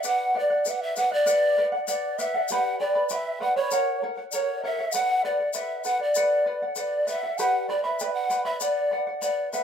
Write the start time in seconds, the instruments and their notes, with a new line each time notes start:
0.04 charango B4 D5 F#5, quena F#5, pan flute F#5, shaker
0.34 charango B4 D5 F#5, quena D5
0.39 pan flute D5
0.50 charango D5 F#5
0.65 charango B4 D5 F#5, quena E5, shaker
0.70 pan flute E5 F#5, quena F#5
0.81 quena E5, pan flute E5
0.96 charango B4 D5 F#5, quena F#5, pan flute F#5, shaker
1.12 quena D5, charango D5 F#5, pan flute D5
1.26 charango B4 D5 F#5, shaker
1.58 charango B4 D5 F#5
1.72 charango D5 F#5
1.88 charango B4 D5 F#5, pan flute D5, quena D5, shaker
2.19 charango B4 D5 F#5, quena E5, pan flute E5, shaker
2.34 charango D5 F#5
2.48 charango G4 B4 D5 B5, quena F#5, pan flute F#5, shaker
2.80 charango B4 D5 G5 B5, pan flute D5, quena D5
2.95 charango B4 D5 B5
3.09 charango B4 D5 G5 B5, pan flute E5, quena F#5, shaker
3.16 quena E5
3.40 charango B4 D5 G5 B5, pan flute F#5, quena F#5
3.56 charango B4 D5 B5, quena C#5, pan flute C#5
3.71 charango A#4 C#5 F#5, shaker
4.02 charango A#4 C#5 F#5
4.17 charango C#5 F#5
4.31 charango A#4 C#5, pan flute C#5, quena D5, shaker
4.35 quena C#5, charango F#5
4.62 charango A#4 C#5 F#5, quena E5, pan flute E5
4.78 charango C#5 F#5
4.92 charango B4 D5 F#5, quena F#5, pan flute F#5, shaker
5.21 charango B4 D5, pan flute D5, quena E5
5.26 quena D5, charango F#5
5.40 charango D5 F#5
5.52 charango B4 D5 F#5, quena E5, pan flute E5, shaker
5.84 charango B4 D5 F#5, quena F#5, pan flute F#5, shaker
5.99 quena D5, charango D5 F#5, pan flute D5
6.15 charango B4 D5 F#5, shaker
6.46 charango B4 D5 F#5
6.62 charango D5 F#5
6.76 charango B4 D5 F#5, quena D5, pan flute D5, shaker
7.06 charango B4 D5 F#5, quena E5, pan flute E5, shaker
7.23 charango D5 F#5
7.38 charango G4 B4 D5 B5, pan flute F#5, quena A5, shaker
7.42 quena F#5
7.67 charango B4 D5 G5 B5, quena D5, pan flute D5
7.83 charango B4 D5 B5, quena E5, pan flute E5
7.99 charango B4 D5 G5 B5, shaker
8.14 quena F#5, pan flute F#5
8.30 charango B4 D5 G5 B5, shaker
8.44 charango B4 D5 B5, quena E5, pan flute E5
8.59 charango B4 D5 F#5, quena D5, pan flute D5, shaker
8.91 charango B4 D5 F#5
9.07 charango D5 F#5
9.22 charango B4 D5 F#5, pan flute D5, shaker
9.52 charango B4 D5 F#5, pan flute E5, shaker